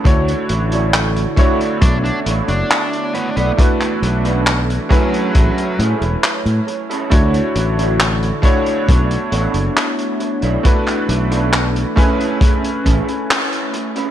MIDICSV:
0, 0, Header, 1, 8, 480
1, 0, Start_track
1, 0, Tempo, 882353
1, 30, Time_signature, 4, 2, 24, 8
1, 7674, End_track
2, 0, Start_track
2, 0, Title_t, "Clean electric guitar"
2, 0, Program_c, 0, 27
2, 391, Note_on_c, 0, 62, 85
2, 394, Note_on_c, 0, 66, 70
2, 395, Note_on_c, 0, 64, 66
2, 396, Note_on_c, 0, 73, 72
2, 510, Note_off_c, 0, 62, 0
2, 510, Note_off_c, 0, 64, 0
2, 511, Note_off_c, 0, 66, 0
2, 512, Note_off_c, 0, 73, 0
2, 751, Note_on_c, 0, 64, 89
2, 755, Note_on_c, 0, 62, 86
2, 755, Note_on_c, 0, 69, 79
2, 755, Note_on_c, 0, 73, 105
2, 1137, Note_off_c, 0, 62, 0
2, 1137, Note_off_c, 0, 64, 0
2, 1138, Note_off_c, 0, 69, 0
2, 1138, Note_off_c, 0, 73, 0
2, 1229, Note_on_c, 0, 64, 80
2, 1233, Note_on_c, 0, 69, 79
2, 1233, Note_on_c, 0, 73, 94
2, 1234, Note_on_c, 0, 62, 70
2, 1353, Note_off_c, 0, 62, 0
2, 1353, Note_off_c, 0, 64, 0
2, 1354, Note_off_c, 0, 69, 0
2, 1354, Note_off_c, 0, 73, 0
2, 1833, Note_on_c, 0, 64, 69
2, 1836, Note_on_c, 0, 69, 62
2, 1836, Note_on_c, 0, 74, 81
2, 1837, Note_on_c, 0, 62, 66
2, 1951, Note_off_c, 0, 62, 0
2, 1951, Note_off_c, 0, 64, 0
2, 1952, Note_off_c, 0, 69, 0
2, 1952, Note_off_c, 0, 74, 0
2, 2310, Note_on_c, 0, 64, 78
2, 2314, Note_on_c, 0, 69, 72
2, 2315, Note_on_c, 0, 62, 73
2, 2315, Note_on_c, 0, 71, 87
2, 2430, Note_off_c, 0, 62, 0
2, 2430, Note_off_c, 0, 64, 0
2, 2431, Note_off_c, 0, 69, 0
2, 2432, Note_off_c, 0, 71, 0
2, 2669, Note_on_c, 0, 64, 88
2, 2671, Note_on_c, 0, 68, 75
2, 2672, Note_on_c, 0, 61, 77
2, 2672, Note_on_c, 0, 69, 104
2, 3055, Note_off_c, 0, 61, 0
2, 3056, Note_off_c, 0, 64, 0
2, 3056, Note_off_c, 0, 68, 0
2, 3057, Note_off_c, 0, 69, 0
2, 3150, Note_on_c, 0, 64, 84
2, 3152, Note_on_c, 0, 71, 95
2, 3153, Note_on_c, 0, 61, 82
2, 3153, Note_on_c, 0, 68, 75
2, 3272, Note_off_c, 0, 61, 0
2, 3273, Note_off_c, 0, 64, 0
2, 3273, Note_off_c, 0, 68, 0
2, 3274, Note_off_c, 0, 71, 0
2, 3751, Note_on_c, 0, 64, 78
2, 3754, Note_on_c, 0, 68, 70
2, 3754, Note_on_c, 0, 69, 85
2, 3756, Note_on_c, 0, 61, 65
2, 3870, Note_off_c, 0, 61, 0
2, 3870, Note_off_c, 0, 64, 0
2, 3871, Note_off_c, 0, 68, 0
2, 3871, Note_off_c, 0, 69, 0
2, 4232, Note_on_c, 0, 62, 85
2, 4234, Note_on_c, 0, 66, 78
2, 4235, Note_on_c, 0, 64, 65
2, 4237, Note_on_c, 0, 73, 80
2, 4350, Note_off_c, 0, 62, 0
2, 4351, Note_off_c, 0, 64, 0
2, 4351, Note_off_c, 0, 66, 0
2, 4352, Note_off_c, 0, 73, 0
2, 4587, Note_on_c, 0, 62, 90
2, 4589, Note_on_c, 0, 69, 89
2, 4590, Note_on_c, 0, 64, 73
2, 4593, Note_on_c, 0, 73, 97
2, 4975, Note_off_c, 0, 62, 0
2, 4975, Note_off_c, 0, 64, 0
2, 4976, Note_off_c, 0, 69, 0
2, 4977, Note_off_c, 0, 73, 0
2, 5066, Note_on_c, 0, 62, 85
2, 5069, Note_on_c, 0, 64, 71
2, 5069, Note_on_c, 0, 69, 78
2, 5073, Note_on_c, 0, 73, 89
2, 5191, Note_off_c, 0, 62, 0
2, 5192, Note_off_c, 0, 64, 0
2, 5192, Note_off_c, 0, 69, 0
2, 5193, Note_off_c, 0, 73, 0
2, 5670, Note_on_c, 0, 64, 75
2, 5673, Note_on_c, 0, 69, 62
2, 5673, Note_on_c, 0, 73, 86
2, 5675, Note_on_c, 0, 62, 72
2, 5789, Note_off_c, 0, 62, 0
2, 5790, Note_off_c, 0, 64, 0
2, 5790, Note_off_c, 0, 69, 0
2, 5791, Note_off_c, 0, 73, 0
2, 6149, Note_on_c, 0, 64, 79
2, 6153, Note_on_c, 0, 69, 72
2, 6153, Note_on_c, 0, 71, 93
2, 6154, Note_on_c, 0, 62, 79
2, 6269, Note_off_c, 0, 62, 0
2, 6270, Note_off_c, 0, 64, 0
2, 6270, Note_off_c, 0, 69, 0
2, 6271, Note_off_c, 0, 71, 0
2, 6508, Note_on_c, 0, 61, 97
2, 6511, Note_on_c, 0, 68, 87
2, 6512, Note_on_c, 0, 64, 85
2, 6514, Note_on_c, 0, 69, 96
2, 6896, Note_off_c, 0, 61, 0
2, 6896, Note_off_c, 0, 64, 0
2, 6897, Note_off_c, 0, 68, 0
2, 6897, Note_off_c, 0, 69, 0
2, 6987, Note_on_c, 0, 61, 86
2, 6990, Note_on_c, 0, 68, 74
2, 6992, Note_on_c, 0, 64, 72
2, 6994, Note_on_c, 0, 69, 92
2, 7112, Note_off_c, 0, 61, 0
2, 7112, Note_off_c, 0, 64, 0
2, 7113, Note_off_c, 0, 68, 0
2, 7114, Note_off_c, 0, 69, 0
2, 7592, Note_on_c, 0, 61, 82
2, 7594, Note_on_c, 0, 68, 73
2, 7595, Note_on_c, 0, 64, 62
2, 7599, Note_on_c, 0, 71, 72
2, 7674, Note_off_c, 0, 61, 0
2, 7674, Note_off_c, 0, 64, 0
2, 7674, Note_off_c, 0, 68, 0
2, 7674, Note_off_c, 0, 71, 0
2, 7674, End_track
3, 0, Start_track
3, 0, Title_t, "Electric grand piano"
3, 0, Program_c, 1, 2
3, 0, Control_c, 1, 64, 127
3, 21, Note_on_c, 1, 57, 80
3, 25, Note_on_c, 1, 62, 73
3, 29, Note_on_c, 1, 64, 75
3, 33, Note_on_c, 1, 66, 73
3, 36, Control_c, 1, 64, 0
3, 37, Note_on_c, 1, 73, 91
3, 145, Control_c, 1, 64, 127
3, 699, Note_off_c, 1, 57, 0
3, 701, Note_off_c, 1, 62, 0
3, 703, Note_off_c, 1, 64, 0
3, 705, Note_off_c, 1, 66, 0
3, 707, Note_off_c, 1, 73, 0
3, 742, Note_on_c, 1, 57, 92
3, 745, Note_on_c, 1, 62, 82
3, 749, Note_on_c, 1, 64, 88
3, 753, Note_on_c, 1, 66, 83
3, 756, Note_on_c, 1, 73, 101
3, 759, Control_c, 1, 64, 0
3, 871, Control_c, 1, 64, 127
3, 1899, Note_off_c, 1, 57, 0
3, 1901, Note_off_c, 1, 62, 0
3, 1903, Note_off_c, 1, 64, 0
3, 1904, Note_off_c, 1, 66, 0
3, 1906, Note_off_c, 1, 73, 0
3, 1944, Note_on_c, 1, 57, 79
3, 1947, Note_on_c, 1, 62, 75
3, 1950, Note_on_c, 1, 64, 77
3, 1955, Note_on_c, 1, 66, 72
3, 1957, Control_c, 1, 64, 0
3, 1960, Note_on_c, 1, 71, 88
3, 2056, Control_c, 1, 64, 127
3, 2620, Note_off_c, 1, 57, 0
3, 2622, Note_off_c, 1, 62, 0
3, 2623, Note_off_c, 1, 64, 0
3, 2626, Note_off_c, 1, 66, 0
3, 2628, Note_off_c, 1, 71, 0
3, 2661, Note_on_c, 1, 57, 93
3, 2663, Note_on_c, 1, 61, 91
3, 2669, Note_on_c, 1, 64, 85
3, 2672, Note_on_c, 1, 80, 87
3, 2678, Control_c, 1, 64, 0
3, 2678, Note_on_c, 1, 71, 103
3, 2775, Control_c, 1, 64, 127
3, 3819, Note_off_c, 1, 57, 0
3, 3820, Note_off_c, 1, 61, 0
3, 3823, Note_off_c, 1, 64, 0
3, 3824, Note_off_c, 1, 80, 0
3, 3827, Note_off_c, 1, 71, 0
3, 3861, Note_on_c, 1, 57, 79
3, 3864, Note_on_c, 1, 62, 77
3, 3868, Note_on_c, 1, 64, 77
3, 3873, Note_on_c, 1, 66, 76
3, 3877, Note_on_c, 1, 73, 90
3, 3878, Control_c, 1, 64, 0
3, 3961, Control_c, 1, 64, 127
3, 4538, Note_off_c, 1, 57, 0
3, 4540, Note_off_c, 1, 62, 0
3, 4542, Note_off_c, 1, 64, 0
3, 4545, Note_off_c, 1, 66, 0
3, 4547, Note_off_c, 1, 73, 0
3, 4580, Note_on_c, 1, 57, 94
3, 4585, Note_on_c, 1, 62, 85
3, 4587, Note_on_c, 1, 64, 90
3, 4592, Note_on_c, 1, 66, 84
3, 4597, Control_c, 1, 64, 0
3, 4597, Note_on_c, 1, 73, 107
3, 4684, Control_c, 1, 64, 127
3, 5738, Note_off_c, 1, 57, 0
3, 5741, Note_off_c, 1, 62, 0
3, 5742, Note_off_c, 1, 64, 0
3, 5744, Note_off_c, 1, 66, 0
3, 5746, Note_off_c, 1, 73, 0
3, 5784, Note_on_c, 1, 57, 85
3, 5787, Note_on_c, 1, 62, 79
3, 5793, Note_on_c, 1, 64, 74
3, 5796, Note_on_c, 1, 66, 72
3, 5797, Control_c, 1, 64, 0
3, 5800, Note_on_c, 1, 71, 96
3, 5883, Control_c, 1, 64, 127
3, 6460, Note_off_c, 1, 57, 0
3, 6462, Note_off_c, 1, 62, 0
3, 6465, Note_off_c, 1, 64, 0
3, 6466, Note_off_c, 1, 66, 0
3, 6468, Note_off_c, 1, 71, 0
3, 6504, Note_on_c, 1, 57, 90
3, 6507, Note_on_c, 1, 61, 91
3, 6511, Note_on_c, 1, 64, 88
3, 6517, Note_on_c, 1, 80, 84
3, 6518, Control_c, 1, 64, 0
3, 6520, Note_on_c, 1, 71, 104
3, 6618, Control_c, 1, 64, 127
3, 7660, Note_off_c, 1, 57, 0
3, 7662, Note_off_c, 1, 61, 0
3, 7664, Note_off_c, 1, 64, 0
3, 7667, Note_off_c, 1, 80, 0
3, 7668, Note_off_c, 1, 71, 0
3, 7674, End_track
4, 0, Start_track
4, 0, Title_t, "Ambient pad"
4, 0, Program_c, 2, 92
4, 0, Note_on_c, 2, 73, 91
4, 31, Note_on_c, 2, 50, 79
4, 32, Note_on_c, 2, 66, 95
4, 33, Note_on_c, 2, 64, 74
4, 732, Note_off_c, 2, 73, 0
4, 744, Note_off_c, 2, 64, 0
4, 744, Note_off_c, 2, 66, 0
4, 755, Note_on_c, 2, 57, 76
4, 756, Note_on_c, 2, 59, 97
4, 1932, Note_off_c, 2, 50, 0
4, 1941, Note_off_c, 2, 59, 0
4, 1951, Note_on_c, 2, 62, 90
4, 1954, Note_on_c, 2, 52, 85
4, 2664, Note_off_c, 2, 62, 0
4, 2665, Note_off_c, 2, 52, 0
4, 2673, Note_on_c, 2, 73, 90
4, 3851, Note_off_c, 2, 57, 0
4, 3871, Note_on_c, 2, 50, 82
4, 3871, Note_on_c, 2, 66, 93
4, 3872, Note_on_c, 2, 64, 76
4, 4572, Note_off_c, 2, 73, 0
4, 4583, Note_off_c, 2, 66, 0
4, 4584, Note_off_c, 2, 50, 0
4, 4584, Note_off_c, 2, 64, 0
4, 4592, Note_on_c, 2, 59, 75
4, 4593, Note_on_c, 2, 62, 90
4, 4594, Note_on_c, 2, 57, 84
4, 5780, Note_off_c, 2, 59, 0
4, 5780, Note_off_c, 2, 62, 0
4, 5791, Note_on_c, 2, 62, 88
4, 5793, Note_on_c, 2, 52, 80
4, 6504, Note_off_c, 2, 52, 0
4, 6504, Note_off_c, 2, 62, 0
4, 6514, Note_on_c, 2, 61, 93
4, 7674, Note_off_c, 2, 57, 0
4, 7674, Note_off_c, 2, 61, 0
4, 7674, End_track
5, 0, Start_track
5, 0, Title_t, "Lead electric guitar"
5, 0, Program_c, 3, 29
5, 988, Note_on_c, 3, 62, 87
5, 1068, Note_off_c, 3, 62, 0
5, 1110, Note_on_c, 3, 62, 79
5, 1187, Note_off_c, 3, 62, 0
5, 1352, Note_on_c, 3, 62, 88
5, 1707, Note_on_c, 3, 59, 94
5, 1787, Note_off_c, 3, 59, 0
5, 1829, Note_on_c, 3, 59, 81
5, 1832, Note_off_c, 3, 62, 0
5, 1906, Note_off_c, 3, 59, 0
5, 2667, Note_on_c, 3, 54, 92
5, 3149, Note_off_c, 3, 54, 0
5, 7674, End_track
6, 0, Start_track
6, 0, Title_t, "Fingered electric bass"
6, 0, Program_c, 4, 33
6, 28, Note_on_c, 4, 38, 106
6, 176, Note_off_c, 4, 38, 0
6, 270, Note_on_c, 4, 33, 86
6, 676, Note_off_c, 4, 33, 0
6, 989, Note_on_c, 4, 35, 106
6, 1137, Note_off_c, 4, 35, 0
6, 1230, Note_on_c, 4, 33, 79
6, 1304, Note_off_c, 4, 33, 0
6, 1351, Note_on_c, 4, 30, 89
6, 1423, Note_off_c, 4, 30, 0
6, 1831, Note_on_c, 4, 35, 79
6, 1904, Note_off_c, 4, 35, 0
6, 2189, Note_on_c, 4, 35, 90
6, 2595, Note_off_c, 4, 35, 0
6, 2912, Note_on_c, 4, 33, 89
6, 2985, Note_off_c, 4, 33, 0
6, 3149, Note_on_c, 4, 45, 100
6, 3224, Note_off_c, 4, 45, 0
6, 3271, Note_on_c, 4, 28, 98
6, 3343, Note_off_c, 4, 28, 0
6, 3512, Note_on_c, 4, 45, 103
6, 3584, Note_off_c, 4, 45, 0
6, 3873, Note_on_c, 4, 38, 102
6, 4019, Note_off_c, 4, 38, 0
6, 4110, Note_on_c, 4, 33, 89
6, 4516, Note_off_c, 4, 33, 0
6, 4833, Note_on_c, 4, 35, 110
6, 4979, Note_off_c, 4, 35, 0
6, 5070, Note_on_c, 4, 33, 86
6, 5144, Note_off_c, 4, 33, 0
6, 5190, Note_on_c, 4, 30, 90
6, 5263, Note_off_c, 4, 30, 0
6, 5672, Note_on_c, 4, 35, 77
6, 5744, Note_off_c, 4, 35, 0
6, 6031, Note_on_c, 4, 35, 91
6, 6437, Note_off_c, 4, 35, 0
6, 6996, Note_on_c, 4, 33, 97
6, 7068, Note_off_c, 4, 33, 0
6, 7674, End_track
7, 0, Start_track
7, 0, Title_t, "Muted clean electric guitar strokes"
7, 270, Note_on_c, 9, 29, 88
7, 324, Note_off_c, 9, 29, 0
7, 1709, Note_on_c, 9, 29, 91
7, 1764, Note_off_c, 9, 29, 0
7, 2189, Note_on_c, 9, 29, 84
7, 2244, Note_off_c, 9, 29, 0
7, 3628, Note_on_c, 9, 29, 92
7, 3682, Note_off_c, 9, 29, 0
7, 4109, Note_on_c, 9, 29, 90
7, 4164, Note_off_c, 9, 29, 0
7, 5548, Note_on_c, 9, 29, 88
7, 5602, Note_off_c, 9, 29, 0
7, 6028, Note_on_c, 9, 29, 85
7, 6082, Note_off_c, 9, 29, 0
7, 7469, Note_on_c, 9, 29, 87
7, 7524, Note_off_c, 9, 29, 0
7, 7674, End_track
8, 0, Start_track
8, 0, Title_t, "Drums"
8, 28, Note_on_c, 9, 36, 124
8, 34, Note_on_c, 9, 42, 88
8, 83, Note_off_c, 9, 36, 0
8, 88, Note_off_c, 9, 42, 0
8, 154, Note_on_c, 9, 42, 57
8, 209, Note_off_c, 9, 42, 0
8, 268, Note_on_c, 9, 42, 74
8, 322, Note_off_c, 9, 42, 0
8, 391, Note_on_c, 9, 42, 61
8, 445, Note_off_c, 9, 42, 0
8, 509, Note_on_c, 9, 42, 105
8, 511, Note_on_c, 9, 39, 125
8, 564, Note_off_c, 9, 42, 0
8, 565, Note_off_c, 9, 39, 0
8, 633, Note_on_c, 9, 42, 52
8, 688, Note_off_c, 9, 42, 0
8, 747, Note_on_c, 9, 36, 107
8, 747, Note_on_c, 9, 42, 80
8, 801, Note_off_c, 9, 36, 0
8, 801, Note_off_c, 9, 42, 0
8, 874, Note_on_c, 9, 42, 52
8, 929, Note_off_c, 9, 42, 0
8, 988, Note_on_c, 9, 42, 102
8, 990, Note_on_c, 9, 36, 117
8, 1043, Note_off_c, 9, 42, 0
8, 1044, Note_off_c, 9, 36, 0
8, 1118, Note_on_c, 9, 42, 49
8, 1172, Note_off_c, 9, 42, 0
8, 1231, Note_on_c, 9, 42, 85
8, 1286, Note_off_c, 9, 42, 0
8, 1351, Note_on_c, 9, 42, 55
8, 1405, Note_off_c, 9, 42, 0
8, 1472, Note_on_c, 9, 42, 92
8, 1475, Note_on_c, 9, 39, 127
8, 1526, Note_off_c, 9, 42, 0
8, 1529, Note_off_c, 9, 39, 0
8, 1595, Note_on_c, 9, 42, 49
8, 1650, Note_off_c, 9, 42, 0
8, 1712, Note_on_c, 9, 42, 61
8, 1766, Note_off_c, 9, 42, 0
8, 1832, Note_on_c, 9, 42, 50
8, 1886, Note_off_c, 9, 42, 0
8, 1951, Note_on_c, 9, 36, 107
8, 1955, Note_on_c, 9, 42, 94
8, 2005, Note_off_c, 9, 36, 0
8, 2009, Note_off_c, 9, 42, 0
8, 2073, Note_on_c, 9, 39, 36
8, 2075, Note_on_c, 9, 42, 55
8, 2127, Note_off_c, 9, 39, 0
8, 2129, Note_off_c, 9, 42, 0
8, 2193, Note_on_c, 9, 42, 76
8, 2248, Note_off_c, 9, 42, 0
8, 2313, Note_on_c, 9, 42, 54
8, 2367, Note_off_c, 9, 42, 0
8, 2428, Note_on_c, 9, 42, 98
8, 2430, Note_on_c, 9, 39, 127
8, 2482, Note_off_c, 9, 42, 0
8, 2485, Note_off_c, 9, 39, 0
8, 2558, Note_on_c, 9, 42, 53
8, 2612, Note_off_c, 9, 42, 0
8, 2669, Note_on_c, 9, 36, 94
8, 2674, Note_on_c, 9, 42, 74
8, 2723, Note_off_c, 9, 36, 0
8, 2729, Note_off_c, 9, 42, 0
8, 2796, Note_on_c, 9, 42, 51
8, 2851, Note_off_c, 9, 42, 0
8, 2910, Note_on_c, 9, 42, 101
8, 2911, Note_on_c, 9, 36, 120
8, 2964, Note_off_c, 9, 42, 0
8, 2966, Note_off_c, 9, 36, 0
8, 3036, Note_on_c, 9, 42, 57
8, 3090, Note_off_c, 9, 42, 0
8, 3153, Note_on_c, 9, 42, 81
8, 3207, Note_off_c, 9, 42, 0
8, 3274, Note_on_c, 9, 42, 52
8, 3328, Note_off_c, 9, 42, 0
8, 3394, Note_on_c, 9, 39, 113
8, 3397, Note_on_c, 9, 42, 92
8, 3448, Note_off_c, 9, 39, 0
8, 3451, Note_off_c, 9, 42, 0
8, 3516, Note_on_c, 9, 42, 55
8, 3570, Note_off_c, 9, 42, 0
8, 3635, Note_on_c, 9, 42, 56
8, 3689, Note_off_c, 9, 42, 0
8, 3758, Note_on_c, 9, 42, 55
8, 3812, Note_off_c, 9, 42, 0
8, 3870, Note_on_c, 9, 42, 102
8, 3873, Note_on_c, 9, 36, 117
8, 3925, Note_off_c, 9, 42, 0
8, 3927, Note_off_c, 9, 36, 0
8, 3993, Note_on_c, 9, 42, 56
8, 4048, Note_off_c, 9, 42, 0
8, 4110, Note_on_c, 9, 42, 80
8, 4165, Note_off_c, 9, 42, 0
8, 4238, Note_on_c, 9, 42, 55
8, 4292, Note_off_c, 9, 42, 0
8, 4350, Note_on_c, 9, 42, 105
8, 4353, Note_on_c, 9, 39, 115
8, 4405, Note_off_c, 9, 42, 0
8, 4407, Note_off_c, 9, 39, 0
8, 4476, Note_on_c, 9, 42, 56
8, 4530, Note_off_c, 9, 42, 0
8, 4587, Note_on_c, 9, 36, 102
8, 4590, Note_on_c, 9, 42, 81
8, 4641, Note_off_c, 9, 36, 0
8, 4644, Note_off_c, 9, 42, 0
8, 4713, Note_on_c, 9, 42, 52
8, 4767, Note_off_c, 9, 42, 0
8, 4834, Note_on_c, 9, 36, 126
8, 4837, Note_on_c, 9, 42, 90
8, 4888, Note_off_c, 9, 36, 0
8, 4892, Note_off_c, 9, 42, 0
8, 4955, Note_on_c, 9, 42, 56
8, 5010, Note_off_c, 9, 42, 0
8, 5071, Note_on_c, 9, 42, 77
8, 5126, Note_off_c, 9, 42, 0
8, 5190, Note_on_c, 9, 42, 58
8, 5245, Note_off_c, 9, 42, 0
8, 5314, Note_on_c, 9, 42, 96
8, 5315, Note_on_c, 9, 39, 114
8, 5369, Note_off_c, 9, 42, 0
8, 5370, Note_off_c, 9, 39, 0
8, 5433, Note_on_c, 9, 42, 60
8, 5488, Note_off_c, 9, 42, 0
8, 5550, Note_on_c, 9, 42, 60
8, 5605, Note_off_c, 9, 42, 0
8, 5670, Note_on_c, 9, 42, 55
8, 5724, Note_off_c, 9, 42, 0
8, 5793, Note_on_c, 9, 42, 99
8, 5794, Note_on_c, 9, 36, 108
8, 5848, Note_off_c, 9, 36, 0
8, 5848, Note_off_c, 9, 42, 0
8, 5914, Note_on_c, 9, 39, 38
8, 5921, Note_on_c, 9, 42, 54
8, 5969, Note_off_c, 9, 39, 0
8, 5976, Note_off_c, 9, 42, 0
8, 6034, Note_on_c, 9, 42, 86
8, 6088, Note_off_c, 9, 42, 0
8, 6156, Note_on_c, 9, 42, 59
8, 6211, Note_off_c, 9, 42, 0
8, 6273, Note_on_c, 9, 39, 117
8, 6273, Note_on_c, 9, 42, 96
8, 6327, Note_off_c, 9, 42, 0
8, 6328, Note_off_c, 9, 39, 0
8, 6398, Note_on_c, 9, 42, 54
8, 6453, Note_off_c, 9, 42, 0
8, 6513, Note_on_c, 9, 36, 112
8, 6517, Note_on_c, 9, 42, 80
8, 6567, Note_off_c, 9, 36, 0
8, 6572, Note_off_c, 9, 42, 0
8, 6640, Note_on_c, 9, 42, 59
8, 6695, Note_off_c, 9, 42, 0
8, 6752, Note_on_c, 9, 36, 127
8, 6756, Note_on_c, 9, 42, 98
8, 6806, Note_off_c, 9, 36, 0
8, 6811, Note_off_c, 9, 42, 0
8, 6879, Note_on_c, 9, 42, 63
8, 6933, Note_off_c, 9, 42, 0
8, 6995, Note_on_c, 9, 36, 62
8, 6997, Note_on_c, 9, 42, 90
8, 7050, Note_off_c, 9, 36, 0
8, 7051, Note_off_c, 9, 42, 0
8, 7118, Note_on_c, 9, 42, 51
8, 7173, Note_off_c, 9, 42, 0
8, 7239, Note_on_c, 9, 42, 106
8, 7240, Note_on_c, 9, 39, 108
8, 7294, Note_off_c, 9, 39, 0
8, 7294, Note_off_c, 9, 42, 0
8, 7358, Note_on_c, 9, 42, 53
8, 7412, Note_off_c, 9, 42, 0
8, 7473, Note_on_c, 9, 42, 62
8, 7528, Note_off_c, 9, 42, 0
8, 7594, Note_on_c, 9, 42, 56
8, 7648, Note_off_c, 9, 42, 0
8, 7674, End_track
0, 0, End_of_file